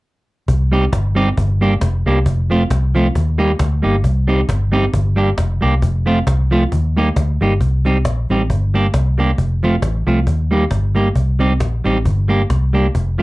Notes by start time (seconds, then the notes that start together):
0.48 C2, cajon bass
0.72 G3 C4 D#4 G4, cajon slap
0.93 G1, cajon bass, cajon slap
1.15 G3 C4 D#4 G4, cajon slap
1.38 G1, cajon bass
1.61 G3 A#3 D4 G4, cajon slap
1.81 F1, cajon bass, cajon slap
2.06 C2 G3 A#3 D4 G4
2.26 F1, cajon bass
2.50 F3 A3 C4 F4, cajon slap
2.70 C2, cajon bass, cajon slap
2.95 F3 A3 C4 F4, cajon slap
3.15 D#2, cajon bass
3.38 G3 A#3 D#4 G4, cajon slap
3.59 D2, cajon bass, cajon slap
3.82 G1 G3 A#3 D#4 G4
4.04 C2, cajon bass
4.28 G3 C4 D#4 G4, cajon slap
4.49 G1, cajon bass, cajon slap
4.72 G3 C4 D#4 G4, cajon slap
4.93 G1, cajon bass
5.16 G3 A#3 D4 G4, cajon slap
5.38 F1, cajon bass, cajon slap
5.61 C2 G3 A#3 D4 G4
5.82 F1, cajon bass
6.06 F3 A3 C4 F4, cajon slap
6.27 C2, cajon bass, cajon slap
6.51 F3 A3 C4 F4, cajon slap
6.72 D#2, cajon bass
6.97 G3 A#3 D#4 G4, cajon slap
7.16 D2, cajon bass, cajon slap
7.41 G1 G3 A#3 D#4 G4, cajon slap
7.61 C2, cajon bass
7.85 G3 C4 D#4 G4, cajon slap
8.05 A#1, cajon bass, cajon slap
8.29 A1 G3 C4 D#4 G4, cajon slap
8.50 G1, cajon bass
8.74 G3 A#3 D4 G4, cajon slap
8.94 C2, cajon bass, cajon slap
9.18 G3 A#3 D4 G4, cajon slap
9.38 F1, cajon bass
9.63 F3 A3 C4 F4, cajon slap
9.82 A1, cajon bass, cajon slap
10.06 C2 F3 A3 C4 F4, cajon slap
10.27 D#2, cajon bass
10.51 G3 A#3 D#4 G4, cajon slap
10.71 G1, cajon bass, cajon slap
10.95 G3 A#3 D#4 G4, cajon slap
11.15 C2, cajon bass
11.39 G3 C4 D#4 G4, cajon slap
11.60 A#1, cajon bass, cajon slap
11.84 A1 G3 C4 D#4 G4, cajon slap
12.05 G1, cajon bass
12.28 G3 A#3 D4 G4, cajon slap
12.50 C2, cajon bass, cajon slap
12.73 G3 A#3 D4 G4, cajon slap
12.95 F1, cajon bass
13.18 F3 A3 C4